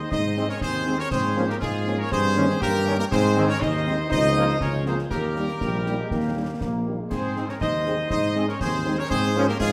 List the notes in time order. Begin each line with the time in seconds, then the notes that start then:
Already playing: D#5
0.11 G#2 D#4 C5 D#5, concert bass drum, snare
0.37 G#3 C4 D#4, snare
0.49 C#4 A#4 C#5, snare
0.61 D#2 C4 G#4 C5, concert bass drum, snare
0.86 G#3 C4 D#4, snare
0.99 C#4 A#4 C#5, snare
1.11 G#2 C4 G#4 C5, concert bass drum, snare, crash
1.36 F3 A#3 C#4, snare
1.48 A#3 G4 A#4, snare
1.60 G#2 G#3 F4 G#4, concert bass drum, snare
1.86 F3 A#3 C#4, snare
1.98 C#4 A#4 C#5
2.11 G2 C4 G#4 C5, concert bass drum, snare
2.35 D#3 A#3 C#4, snare
2.50 snare
2.61 G2 A#3 G4 A#4, concert bass drum, snare
2.86 D#3 A#3 C#4, snare
2.98 A#3 G4 A#4, snare
3.11 G#2 C4 G#4 C5, concert bass drum, snare, crash
3.36 D#3 G#3 C4, snare
3.48 C#4 A#4 C#5, snare
3.60 D#2 D#4 C5 D#5, concert bass drum, snare
3.86 D#3 G#3 C4, snare
4.10 C#2 D#4 C5 D#5, concert bass drum, snare
4.36 F3 A#3 F4, snare
4.48 snare
4.60 C#2 C#4 A#4 C#5, concert bass drum, snare
4.86 F3 A#3 C4 F4 G#4 C5, snare
4.98 snare
5.11 D#2 A#3 G4 A#4, concert bass drum, snare, crash
5.36 G3 A#3 D#4, snare
5.48 snare
5.61 A#1 G3, concert bass drum, snare
5.86 G3 A#3 D#4, snare
5.99 G#3
6.11 D#2 A#3, concert bass drum, snare
6.36 G3 A#3 D#4
6.61 A#1 A#3, concert bass drum, snare
6.86 G3 A#3 D#4
6.99 G#3
7.10 G#2 C4 G#4 C5, concert bass drum, snare, crash
7.35 G#3 C4 D#4, snare
7.48 C#4 A#4 C#5, snare
7.60 D#2 D#4 C5 D#5, concert bass drum, snare
7.85 G#3 C4 D#4, snare
8.10 G#2 D#4 C5 D#5, concert bass drum, snare
8.35 G#3 C4 D#4, snare
8.48 C#4 A#4 C#5, snare
8.61 D#2 C4 G#4 C5, concert bass drum, snare
8.85 G#3 C4 D#4, snare
8.98 C#4 A#4 C#5, snare
9.10 G#2 C4 G#4 C5, concert bass drum, snare, crash
9.36 F3 A#3 C#4, snare
9.47 A#3 G4 A#4, snare
9.60 G#2 G#3 F4 G#4, concert bass drum, snare